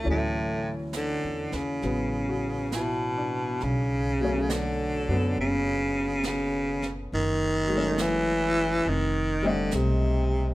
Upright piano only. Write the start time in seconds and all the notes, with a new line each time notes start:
0.04 E3 F#3 A3 C#4
1.82 F#3 B3
2.29 F#4
2.75 E4
3.18 D4
4.20 B2 F#3 A3
4.24 C#4
5.09 F#3 B3
7.67 F#3 G#3
7.74 A3 C#4
9.42 G3 A3 C4
9.46 D#5